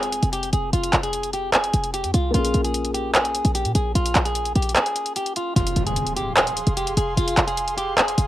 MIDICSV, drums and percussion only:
0, 0, Header, 1, 2, 480
1, 0, Start_track
1, 0, Key_signature, -4, "minor"
1, 0, Tempo, 402685
1, 871, Time_signature, 4, 2, 24, 8
1, 9861, End_track
2, 0, Start_track
2, 0, Title_t, "Drums"
2, 33, Note_on_c, 9, 42, 57
2, 149, Note_off_c, 9, 42, 0
2, 149, Note_on_c, 9, 42, 87
2, 268, Note_off_c, 9, 42, 0
2, 269, Note_on_c, 9, 42, 60
2, 388, Note_off_c, 9, 42, 0
2, 390, Note_on_c, 9, 42, 93
2, 510, Note_off_c, 9, 42, 0
2, 512, Note_on_c, 9, 42, 61
2, 629, Note_off_c, 9, 42, 0
2, 629, Note_on_c, 9, 42, 76
2, 749, Note_off_c, 9, 42, 0
2, 872, Note_on_c, 9, 42, 81
2, 991, Note_off_c, 9, 42, 0
2, 995, Note_on_c, 9, 42, 83
2, 1106, Note_off_c, 9, 42, 0
2, 1106, Note_on_c, 9, 42, 51
2, 1111, Note_on_c, 9, 39, 102
2, 1225, Note_off_c, 9, 42, 0
2, 1230, Note_off_c, 9, 39, 0
2, 1232, Note_on_c, 9, 42, 55
2, 1347, Note_off_c, 9, 42, 0
2, 1347, Note_on_c, 9, 42, 93
2, 1467, Note_off_c, 9, 42, 0
2, 1470, Note_on_c, 9, 42, 52
2, 1588, Note_off_c, 9, 42, 0
2, 1588, Note_on_c, 9, 42, 62
2, 1707, Note_off_c, 9, 42, 0
2, 1829, Note_on_c, 9, 42, 74
2, 1830, Note_on_c, 9, 39, 117
2, 1948, Note_off_c, 9, 42, 0
2, 1949, Note_off_c, 9, 39, 0
2, 1952, Note_on_c, 9, 42, 56
2, 2068, Note_off_c, 9, 42, 0
2, 2068, Note_on_c, 9, 42, 82
2, 2187, Note_off_c, 9, 42, 0
2, 2189, Note_on_c, 9, 42, 57
2, 2308, Note_off_c, 9, 42, 0
2, 2310, Note_on_c, 9, 42, 96
2, 2429, Note_off_c, 9, 42, 0
2, 2431, Note_on_c, 9, 42, 61
2, 2550, Note_off_c, 9, 42, 0
2, 2550, Note_on_c, 9, 42, 77
2, 2669, Note_off_c, 9, 42, 0
2, 2791, Note_on_c, 9, 42, 84
2, 2911, Note_off_c, 9, 42, 0
2, 2915, Note_on_c, 9, 42, 85
2, 3027, Note_off_c, 9, 42, 0
2, 3027, Note_on_c, 9, 42, 51
2, 3147, Note_off_c, 9, 42, 0
2, 3152, Note_on_c, 9, 42, 54
2, 3268, Note_off_c, 9, 42, 0
2, 3268, Note_on_c, 9, 42, 91
2, 3387, Note_off_c, 9, 42, 0
2, 3391, Note_on_c, 9, 42, 55
2, 3509, Note_off_c, 9, 42, 0
2, 3509, Note_on_c, 9, 42, 64
2, 3629, Note_off_c, 9, 42, 0
2, 3750, Note_on_c, 9, 42, 73
2, 3751, Note_on_c, 9, 39, 119
2, 3869, Note_off_c, 9, 42, 0
2, 3870, Note_off_c, 9, 39, 0
2, 3873, Note_on_c, 9, 42, 56
2, 3989, Note_off_c, 9, 42, 0
2, 3989, Note_on_c, 9, 42, 84
2, 4108, Note_off_c, 9, 42, 0
2, 4108, Note_on_c, 9, 42, 58
2, 4228, Note_off_c, 9, 42, 0
2, 4230, Note_on_c, 9, 42, 95
2, 4349, Note_off_c, 9, 42, 0
2, 4351, Note_on_c, 9, 42, 61
2, 4470, Note_off_c, 9, 42, 0
2, 4470, Note_on_c, 9, 42, 80
2, 4589, Note_off_c, 9, 42, 0
2, 4711, Note_on_c, 9, 42, 81
2, 4831, Note_off_c, 9, 42, 0
2, 4835, Note_on_c, 9, 42, 81
2, 4946, Note_off_c, 9, 42, 0
2, 4946, Note_on_c, 9, 42, 51
2, 4951, Note_on_c, 9, 39, 102
2, 5065, Note_off_c, 9, 42, 0
2, 5070, Note_off_c, 9, 39, 0
2, 5071, Note_on_c, 9, 42, 56
2, 5186, Note_off_c, 9, 42, 0
2, 5186, Note_on_c, 9, 42, 94
2, 5306, Note_off_c, 9, 42, 0
2, 5309, Note_on_c, 9, 42, 53
2, 5428, Note_off_c, 9, 42, 0
2, 5429, Note_on_c, 9, 46, 68
2, 5431, Note_on_c, 9, 42, 40
2, 5511, Note_off_c, 9, 42, 0
2, 5511, Note_on_c, 9, 42, 51
2, 5548, Note_off_c, 9, 46, 0
2, 5592, Note_off_c, 9, 42, 0
2, 5592, Note_on_c, 9, 42, 65
2, 5669, Note_off_c, 9, 42, 0
2, 5669, Note_on_c, 9, 42, 72
2, 5670, Note_on_c, 9, 39, 116
2, 5788, Note_off_c, 9, 42, 0
2, 5789, Note_off_c, 9, 39, 0
2, 5793, Note_on_c, 9, 42, 56
2, 5909, Note_off_c, 9, 42, 0
2, 5909, Note_on_c, 9, 42, 85
2, 6028, Note_off_c, 9, 42, 0
2, 6029, Note_on_c, 9, 42, 59
2, 6148, Note_off_c, 9, 42, 0
2, 6150, Note_on_c, 9, 42, 95
2, 6269, Note_off_c, 9, 42, 0
2, 6271, Note_on_c, 9, 42, 59
2, 6390, Note_off_c, 9, 42, 0
2, 6390, Note_on_c, 9, 42, 77
2, 6509, Note_off_c, 9, 42, 0
2, 6631, Note_on_c, 9, 42, 83
2, 6750, Note_off_c, 9, 42, 0
2, 6754, Note_on_c, 9, 42, 85
2, 6866, Note_off_c, 9, 42, 0
2, 6866, Note_on_c, 9, 42, 54
2, 6986, Note_off_c, 9, 42, 0
2, 6992, Note_on_c, 9, 42, 56
2, 7107, Note_off_c, 9, 42, 0
2, 7107, Note_on_c, 9, 42, 96
2, 7227, Note_off_c, 9, 42, 0
2, 7230, Note_on_c, 9, 42, 55
2, 7349, Note_off_c, 9, 42, 0
2, 7349, Note_on_c, 9, 42, 62
2, 7468, Note_off_c, 9, 42, 0
2, 7589, Note_on_c, 9, 42, 72
2, 7590, Note_on_c, 9, 39, 122
2, 7708, Note_off_c, 9, 42, 0
2, 7709, Note_off_c, 9, 39, 0
2, 7713, Note_on_c, 9, 42, 57
2, 7829, Note_off_c, 9, 42, 0
2, 7829, Note_on_c, 9, 42, 85
2, 7948, Note_off_c, 9, 42, 0
2, 7948, Note_on_c, 9, 42, 60
2, 8067, Note_off_c, 9, 42, 0
2, 8069, Note_on_c, 9, 42, 96
2, 8189, Note_off_c, 9, 42, 0
2, 8190, Note_on_c, 9, 42, 62
2, 8309, Note_off_c, 9, 42, 0
2, 8309, Note_on_c, 9, 42, 79
2, 8428, Note_off_c, 9, 42, 0
2, 8551, Note_on_c, 9, 42, 82
2, 8670, Note_off_c, 9, 42, 0
2, 8674, Note_on_c, 9, 42, 85
2, 8786, Note_off_c, 9, 42, 0
2, 8786, Note_on_c, 9, 42, 54
2, 8791, Note_on_c, 9, 39, 102
2, 8905, Note_off_c, 9, 42, 0
2, 8910, Note_off_c, 9, 39, 0
2, 8912, Note_on_c, 9, 42, 57
2, 9028, Note_off_c, 9, 42, 0
2, 9028, Note_on_c, 9, 42, 96
2, 9147, Note_off_c, 9, 42, 0
2, 9150, Note_on_c, 9, 42, 56
2, 9269, Note_off_c, 9, 42, 0
2, 9269, Note_on_c, 9, 42, 65
2, 9388, Note_off_c, 9, 42, 0
2, 9510, Note_on_c, 9, 42, 73
2, 9511, Note_on_c, 9, 39, 126
2, 9629, Note_off_c, 9, 42, 0
2, 9630, Note_off_c, 9, 39, 0
2, 9633, Note_on_c, 9, 42, 58
2, 9749, Note_off_c, 9, 42, 0
2, 9749, Note_on_c, 9, 42, 85
2, 9861, Note_off_c, 9, 42, 0
2, 9861, End_track
0, 0, End_of_file